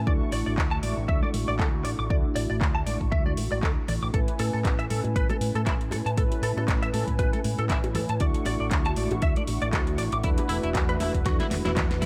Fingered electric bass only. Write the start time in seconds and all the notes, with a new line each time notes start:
0.07 D2
0.32 A1
0.46 A1
0.58 D2
0.83 A1
0.97 A1
1.09 D2
1.34 A1
1.48 A1
1.60 D2
1.84 A1
1.99 A1
2.10 D2
2.36 A1
2.50 A1
2.61 D2
2.86 A1
3.01 A1
3.12 D2
3.37 A1
3.52 A1
3.63 D2
3.88 A1
4.02 A1
4.14 A1
4.39 A2
4.54 A2
4.65 A1
4.90 A2
5.05 A2
5.16 A1
5.41 A2
5.55 A2
5.67 A1
5.91 A2
6.06 A2
6.17 A1
6.42 A2
6.56 A2
6.68 A1
6.93 A2
7.08 A2
7.19 A1
7.44 A2
7.58 A2
7.70 A1
7.95 A2
8.09 A2
8.21 D2
8.46 A1
8.60 A1
8.71 D2
8.97 A1
9.11 A1
9.22 D2
9.48 A1
9.62 A1
9.73 D2
9.98 A1
10.12 A1
10.24 E2
10.49 E1
10.63 E1
10.75 E2
11.00 E1
11.14 E1
11.26 E2
11.51 E1
11.65 E1
11.77 E2
12.02 E1